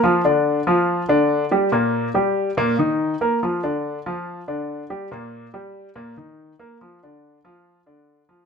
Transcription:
0.03 0.21 F3 medium
0.03 0.21 F4 medium
0.24 0.59 D3 medium
0.24 0.59 D4 medium
0.67 1.01 F3 medium
0.67 1.02 F4 medium
1.08 1.43 D3 medium
1.08 1.44 D4 medium
1.51 1.69 G3 medium
1.51 1.69 G4 medium
1.72 2.07 A#2 medium
1.72 2.07 A#3 medium
2.14 2.49 G3 medium
2.14 2.49 G4 medium
2.57 2.74 A#2 medium
2.57 2.75 A#3 medium
2.79 3.13 D#3 medium
2.79 3.13 D#4 medium
3.21 3.38 A#3 medium
3.21 3.38 A#4 medium
3.43 3.60 F3 medium
3.43 3.60 F4 medium
3.63 3.98 D3 medium
3.63 3.98 D4 medium
4.06 4.41 F3 medium
4.06 4.40 F4 medium
4.48 4.82 D3 medium
4.48 4.83 D4 medium
4.90 5.07 G3 medium
4.90 5.07 G4 medium
5.11 5.46 A#2 medium
5.11 5.46 A#3 medium
5.54 5.88 G3 medium
5.54 5.88 G4 medium
5.96 6.13 A#2 medium
5.96 6.13 A#3 medium
6.17 6.52 D#3 medium
6.17 6.52 D#4 medium
6.59 6.77 A#3 medium
6.59 6.77 A#4 medium
6.81 6.98 F3 medium
6.81 6.98 F4 medium
7.03 7.37 D3 medium
7.03 7.37 D4 medium
7.44 7.79 F3 medium
7.44 7.79 F4 medium
7.86 8.21 D3 medium
7.86 8.21 D4 medium
8.29 8.46 F3 medium
8.29 8.46 F4 medium

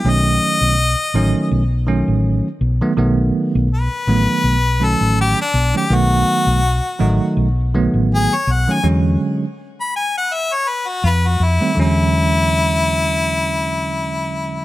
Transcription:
0.00 0.11 G4 medium
0.05 0.37 B1 medium
0.05 0.74 D#3 medium
0.05 0.74 F#3 medium
0.05 0.75 A3 medium
0.05 0.75 C#4 medium
0.10 1.50 D#5 loud
0.61 0.94 B1 medium
1.14 1.32 A1 medium
1.14 1.62 D#3 medium
1.14 1.62 F#3 medium
1.14 1.62 A3 medium
1.14 1.62 C#4 medium
1.51 2.01 B1 medium
1.87 2.47 D#3 medium
1.87 2.47 F#3 medium
1.87 2.47 A3 medium
1.87 2.47 C#4 loud
2.08 2.40 A1 medium
2.61 2.79 B1 medium
2.81 2.92 D#3 medium
2.81 2.92 F#3 medium
2.81 2.92 A3 medium
2.81 2.92 B3 medium
2.97 3.30 B1 medium
2.97 3.67 D#3 medium
2.97 3.67 F#3 medium
2.97 3.67 A3 medium
2.97 3.67 B3 medium
3.55 3.87 B1 loud
3.74 4.86 B4 loud
4.07 4.26 A1 medium
4.07 4.55 D#3 medium
4.07 4.55 F#3 medium
4.07 4.55 A3 medium
4.07 4.55 B3 medium
4.44 4.94 B1 medium
4.80 5.40 D#3 medium
4.80 5.40 F#3 medium
4.80 5.40 A3 medium
4.80 5.40 C#4 medium
4.84 5.18 A4 medium
5.01 5.33 A1 medium
5.21 5.39 G4 loud
5.41 5.75 D4 medium
5.54 5.72 B1 medium
5.74 5.85 D#3 medium
5.74 5.85 F#3 medium
5.74 5.85 A3 medium
5.74 5.85 C#4 medium
5.74 5.96 G4 medium
5.90 6.23 B1 medium
5.90 6.59 D#3 medium
5.90 6.60 F#3 medium
5.90 6.60 A3 medium
5.90 6.60 B3 medium
5.95 7.35 F#4 loud
6.47 6.79 B1 medium
6.99 7.18 A1 medium
6.99 7.47 D#3 medium
6.99 7.47 F#3 medium
6.99 7.47 A3 medium
6.99 7.47 D#4 medium
7.37 7.87 B1 medium
7.74 8.33 D#3 medium
7.74 8.33 F#3 medium
7.74 8.33 A3 medium
7.74 8.34 B3 medium
7.94 8.26 A1 medium
8.14 8.37 G#4 loud
8.35 8.54 C#5 loud
8.47 8.65 B1 medium
8.52 8.74 F#5 medium
8.68 8.78 D#3 medium
8.68 8.78 F#3 medium
8.68 8.78 A3 medium
8.68 8.78 C#4 medium
8.72 8.85 G#5 medium
8.83 9.16 E2 medium
8.83 9.44 D3 medium
8.83 9.44 F#3 medium
8.83 9.44 G#3 medium
8.83 9.44 C#4 medium
9.80 9.94 B5 medium
9.96 10.14 G#5 medium
10.17 10.35 F#5 medium
10.34 10.55 E5 medium
10.53 10.70 C#5 medium
10.68 10.90 B4 medium
10.88 11.06 F#4 medium
11.04 11.35 F2 medium
11.04 11.07 F4 loud
11.04 11.29 B4 medium
11.27 11.45 F#4 medium
11.40 11.58 F2 medium
11.40 11.77 E4 medium
11.60 11.70 D#3 medium
11.60 11.71 G3 medium
11.60 11.71 A3 medium
11.60 11.71 C4 medium
11.75 14.65 E2 medium
11.75 14.65 D3 medium
11.75 14.65 F#3 medium
11.75 14.65 G#3 medium
11.80 14.65 C#4 medium
11.80 14.65 E4 loud

